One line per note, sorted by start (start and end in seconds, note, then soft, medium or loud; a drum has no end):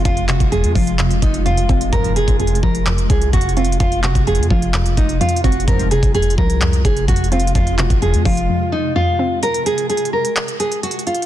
0.00 9.39 C3 medium
0.00 5.64 G#3 medium
0.00 0.99 C4 medium
0.00 5.64 F4 medium
0.05 0.39 F1 loud
0.05 0.51 F2 medium
0.05 0.25 F4 loud
0.05 kick loud
0.05 closed hi-hat medium
0.17 closed hi-hat medium
0.29 1.46 C3 medium
0.29 0.48 F#4 medium
0.29 clap medium
0.29 closed hi-hat medium
0.40 0.65 F1 loud
0.40 kick medium
0.40 closed hi-hat medium
0.52 0.98 F2 medium
0.52 0.71 G#4 medium
0.52 closed hi-hat medium
0.64 0.75 F2 loud
0.64 closed hi-hat medium
0.75 1.20 F1 loud
0.75 1.93 F3 loud
0.75 1.19 F4 medium
0.75 kick loud
0.75 open hi-hat medium
0.87 closed hi-hat medium
0.99 1.45 F2 medium
0.99 clap loud
0.99 closed hi-hat medium
1.11 closed hi-hat medium
1.22 1.67 F1 loud
1.22 1.42 D#4 medium
1.22 kick medium
1.22 closed hi-hat medium
1.34 closed hi-hat medium
1.46 1.91 F2 medium
1.46 1.90 F4 loud
1.46 closed hi-hat soft
1.57 closed hi-hat medium
1.69 1.92 F1 loud
1.69 1.93 C4 medium
1.69 kick medium
1.69 closed hi-hat soft
1.81 closed hi-hat medium
1.92 2.26 F1 loud
1.92 2.13 C2 loud
1.92 2.38 F2 loud
1.92 2.13 G#2 loud
1.92 2.13 F3 loud
1.92 2.12 A#4 loud
1.92 kick loud
1.92 closed hi-hat medium
2.04 closed hi-hat medium
2.16 3.33 C3 medium
2.16 2.36 G#4 medium
2.16 closed hi-hat medium
2.28 2.62 F1 loud
2.28 kick medium
2.28 closed hi-hat medium
2.39 2.85 F2 medium
2.39 2.59 G#4 medium
2.39 closed hi-hat medium
2.47 closed hi-hat medium
2.55 closed hi-hat medium
2.63 3.08 F1 loud
2.63 3.80 F3 loud
2.63 3.07 A#4 medium
2.63 kick loud
2.75 closed hi-hat medium
2.86 3.32 F2 medium
2.86 clap loud
2.86 closed hi-hat medium
2.98 closed hi-hat medium
3.10 3.32 C2 loud
3.10 3.29 G#4 medium
3.10 kick medium
3.10 closed hi-hat medium
3.22 closed hi-hat medium
3.33 3.78 F1 loud
3.33 3.79 F2 medium
3.33 3.53 F#4 medium
3.33 kick medium
3.33 closed hi-hat medium
3.41 closed hi-hat medium
3.49 closed hi-hat medium
3.57 4.74 C4 medium
3.57 3.76 F4 medium
3.57 closed hi-hat medium
3.65 closed hi-hat medium
3.72 closed hi-hat medium
3.80 4.14 F1 loud
3.80 4.26 F2 medium
3.80 4.00 F4 loud
3.80 kick loud
3.80 closed hi-hat medium
3.92 closed hi-hat medium
4.04 5.21 C3 medium
4.04 4.23 F#4 medium
4.04 clap medium
4.04 closed hi-hat medium
4.15 4.40 F1 loud
4.15 kick medium
4.15 closed hi-hat medium
4.27 4.73 F2 medium
4.27 4.47 G#4 medium
4.27 closed hi-hat medium
4.35 4.50 F2 loud
4.35 closed hi-hat medium
4.43 closed hi-hat medium
4.50 4.96 F1 loud
4.50 5.68 F3 loud
4.50 4.95 F4 medium
4.50 kick loud
4.62 closed hi-hat medium
4.74 5.20 F2 medium
4.74 clap loud
4.74 closed hi-hat medium
4.86 closed hi-hat medium
4.97 5.20 F1 loud
4.97 5.17 D#4 medium
4.97 kick medium
4.97 closed hi-hat medium
5.09 closed hi-hat medium
5.21 5.66 F2 loud
5.21 5.40 F4 medium
5.21 closed hi-hat medium
5.29 closed hi-hat medium
5.36 closed hi-hat medium
5.44 5.67 F1 loud
5.44 5.67 C4 medium
5.44 5.64 F#4 medium
5.44 kick medium
5.44 closed hi-hat medium
5.52 closed hi-hat medium
5.60 closed hi-hat medium
5.68 6.01 F1 loud
5.68 5.88 C2 medium
5.68 6.13 F2 medium
5.68 5.88 G#2 loud
5.68 5.88 F3 loud
5.68 9.39 G#3 medium
5.68 9.39 F4 medium
5.68 5.87 A#4 loud
5.68 kick loud
5.68 closed hi-hat medium
5.79 closed hi-hat medium
5.91 7.08 C3 medium
5.91 6.11 G#4 medium
5.91 closed hi-hat medium
6.03 6.37 F1 loud
6.03 kick medium
6.03 closed hi-hat medium
6.14 6.60 F2 medium
6.14 6.34 G#4 medium
6.14 closed hi-hat medium
6.22 closed hi-hat medium
6.30 closed hi-hat medium
6.38 6.83 C2 loud
6.38 7.55 F3 loud
6.38 6.82 A#4 medium
6.38 kick loud
6.50 closed hi-hat medium
6.61 7.07 F2 medium
6.61 clap loud
6.61 closed hi-hat medium
6.73 closed hi-hat medium
6.85 7.07 F1 loud
6.85 7.04 G#4 medium
6.85 kick medium
6.85 closed hi-hat medium
6.97 closed hi-hat medium
7.08 7.53 F1 loud
7.08 7.54 F2 medium
7.08 7.28 F#4 medium
7.08 kick medium
7.08 closed hi-hat medium
7.16 closed hi-hat medium
7.24 closed hi-hat medium
7.32 8.49 C4 medium
7.32 7.51 F4 medium
7.32 closed hi-hat medium
7.40 closed hi-hat medium
7.47 closed hi-hat medium
7.55 7.89 F1 loud
7.55 8.01 F2 loud
7.55 7.75 F4 loud
7.55 kick loud
7.55 closed hi-hat medium
7.67 closed hi-hat medium
7.79 8.96 C3 medium
7.79 7.98 F#4 medium
7.79 clap medium
7.79 closed hi-hat medium
7.90 8.15 F1 loud
7.90 kick medium
7.90 closed hi-hat medium
8.02 8.48 F2 medium
8.02 8.21 G#4 medium
8.02 closed hi-hat medium
8.14 8.25 F2 loud
8.14 closed hi-hat medium
8.25 8.48 F1 loud
8.25 9.43 F3 loud
8.25 8.70 F4 medium
8.25 kick loud
8.25 open hi-hat medium
8.37 closed hi-hat medium
8.49 8.95 F2 medium
8.72 8.92 D#4 medium
8.96 9.43 F2 medium
8.96 9.40 F4 loud
9.19 9.43 C4 medium
9.43 9.62 A#4 loud
9.43 closed hi-hat medium
9.54 closed hi-hat medium
9.66 9.86 G#4 medium
9.66 closed hi-hat medium
9.78 closed hi-hat medium
9.90 10.09 G#4 medium
9.90 closed hi-hat medium
9.97 closed hi-hat medium
10.05 closed hi-hat medium
10.13 10.57 A#4 medium
10.25 closed hi-hat medium
10.36 clap loud
10.36 closed hi-hat medium
10.48 closed hi-hat medium
10.60 10.79 G#4 medium
10.60 closed hi-hat medium
10.72 closed hi-hat medium
10.83 11.03 F#4 medium
10.83 closed hi-hat medium
10.91 closed hi-hat medium
10.99 closed hi-hat medium
11.07 11.26 F4 medium
11.07 closed hi-hat medium
11.15 closed hi-hat medium
11.22 closed hi-hat medium